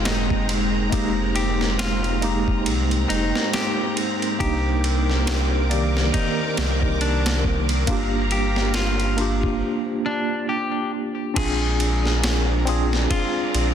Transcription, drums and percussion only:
0.05 snare loud
0.05 ride medium
0.30 kick medium
0.49 ride medium
0.92 kick loud
0.92 ride medium
1.36 ride medium
1.61 snare soft
1.79 snare loud
1.79 ride medium
2.04 ride soft
2.22 ride medium
2.48 kick medium
2.66 ride medium
2.91 ride soft
3.10 ride medium
3.35 snare soft
3.53 snare loud
3.53 ride medium
3.97 ride medium
4.22 ride soft
4.40 kick loud
4.40 ride medium
4.84 ride medium
5.10 snare soft
5.27 snare loud
5.27 ride medium
5.71 ride medium
5.97 snare soft
6.14 kick loud
6.14 ride medium
6.57 snare medium
6.57 ride medium
6.82 kick medium
7.01 ride medium
7.26 snare loud
7.26 ride medium
7.44 kick medium
7.69 ride medium
7.87 kick medium
7.87 ride medium
8.31 ride medium
8.56 snare soft
8.74 snare loud
8.74 ride medium
9.00 ride soft
9.18 ride medium
9.43 kick medium
11.36 kick loud
11.36 crash medium
11.36 ride medium
11.80 ride medium
12.05 snare soft
12.24 snare loud
12.24 ride medium
12.67 ride medium
12.93 snare medium
13.10 kick loud
13.10 ride medium
13.54 ride medium

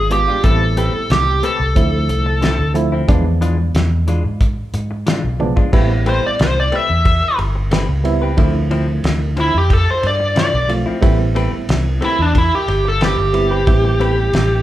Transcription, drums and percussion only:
0.11 closed hi-hat medium
0.44 kick loud
0.44 closed hi-hat medium
0.77 closed hi-hat medium
1.10 snare loud
1.10 closed hi-hat medium
1.43 closed hi-hat medium
1.76 kick medium
1.76 closed hi-hat medium
2.09 closed hi-hat medium
2.42 snare loud
2.42 closed hi-hat medium
2.75 closed hi-hat medium
3.08 kick loud
3.08 closed hi-hat medium
3.42 closed hi-hat medium
3.75 snare loud
3.75 closed hi-hat medium
4.08 closed hi-hat medium
4.41 kick medium
4.41 closed hi-hat medium
4.74 closed hi-hat medium
5.07 snare loud
5.07 closed hi-hat medium
5.40 high tom medium
5.57 kick medium
5.73 kick loud
5.73 crash medium
6.06 ride medium
6.39 snare loud
6.39 ride medium
6.72 ride medium
7.05 kick medium
7.05 ride medium
7.39 ride medium
7.71 snare loud
7.71 ride medium
8.05 ride medium
8.38 kick loud
8.38 ride medium
8.71 ride medium
9.04 snare loud
9.04 ride medium
9.37 ride medium
9.70 kick medium
9.70 ride medium
10.03 ride medium
10.36 snare loud
10.36 ride medium
10.69 ride medium
11.03 kick loud
11.03 ride medium
11.36 ride medium
11.69 snare loud
11.69 ride medium
12.02 ride medium
12.35 kick medium
12.35 ride medium
12.68 ride medium
13.01 snare loud
13.01 ride medium
13.34 ride medium
13.67 kick loud
13.67 ride medium
14.01 ride medium
14.33 snare loud
14.33 ride medium

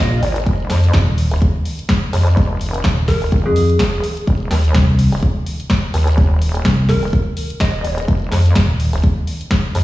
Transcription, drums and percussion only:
0.23 open hi-hat loud
0.36 closed hi-hat medium
0.46 kick loud
0.46 closed hi-hat medium
0.70 snare medium
0.70 open hi-hat loud
0.84 closed hi-hat medium
0.93 kick loud
0.93 snare loud
0.93 closed hi-hat medium
1.18 open hi-hat loud
1.31 open hi-hat medium
1.42 kick loud
1.42 closed hi-hat medium
1.65 open hi-hat loud
1.79 closed hi-hat medium
1.89 kick loud
1.89 snare loud
1.89 closed hi-hat medium
2.13 open hi-hat loud
2.27 closed hi-hat medium
2.37 kick loud
2.37 closed hi-hat medium
2.61 open hi-hat loud
2.74 closed hi-hat medium
2.84 kick loud
2.84 snare loud
2.84 closed hi-hat medium
3.08 kick medium
3.08 snare medium
3.08 open hi-hat loud
3.22 open hi-hat medium
3.32 kick loud
3.32 closed hi-hat medium
3.56 open hi-hat loud
3.69 closed hi-hat medium
3.79 kick loud
3.79 snare loud
3.79 closed hi-hat medium
4.04 open hi-hat loud
4.17 closed hi-hat medium
4.27 kick loud
4.27 closed hi-hat soft
4.51 snare medium
4.51 open hi-hat loud
4.65 closed hi-hat medium
4.74 kick loud
4.74 snare loud
4.74 closed hi-hat medium
4.99 open hi-hat loud
5.12 open hi-hat medium
5.23 kick loud
5.23 closed hi-hat soft
5.46 open hi-hat loud
5.60 closed hi-hat medium
5.70 kick loud
5.70 snare loud
5.70 closed hi-hat medium
5.94 open hi-hat loud
6.07 closed hi-hat medium
6.18 kick loud
6.18 closed hi-hat medium
6.42 open hi-hat loud
6.55 closed hi-hat medium
6.65 kick loud
6.65 snare loud
6.65 closed hi-hat medium
6.89 kick medium
6.89 snare medium
6.89 open hi-hat loud
7.03 open hi-hat medium
7.13 kick loud
7.13 closed hi-hat medium
7.37 open hi-hat loud
7.50 closed hi-hat medium
7.60 kick loud
7.60 snare loud
7.60 closed hi-hat soft
7.84 open hi-hat loud
7.98 closed hi-hat medium
8.08 kick loud
8.08 closed hi-hat medium
8.32 snare medium
8.32 open hi-hat loud
8.46 closed hi-hat medium
8.55 kick loud
8.55 snare loud
8.55 closed hi-hat medium
8.80 open hi-hat loud
8.93 open hi-hat medium
9.04 kick loud
9.04 closed hi-hat medium
9.27 open hi-hat loud
9.41 closed hi-hat medium
9.51 kick loud
9.51 snare loud
9.51 closed hi-hat soft
9.75 open hi-hat loud

